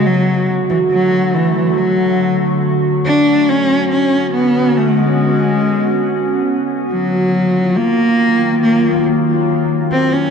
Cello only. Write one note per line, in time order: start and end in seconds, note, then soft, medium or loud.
0.06 0.49 F#3 loud
0.70 0.80 E3 medium
0.92 1.36 F#3 loud
1.35 1.79 E3 medium
1.77 2.63 F#3 medium
3.06 3.50 D4 loud
3.49 3.91 C#4 loud
3.92 4.32 C#4 loud
4.35 4.79 B3 loud
4.77 5.00 A3 medium
4.99 6.27 G#3 medium
6.92 7.79 F#3 loud
7.77 8.62 A#3 loud
8.63 9.03 A#3 loud
9.92 10.15 C4 loud
10.13 10.30 C#4 loud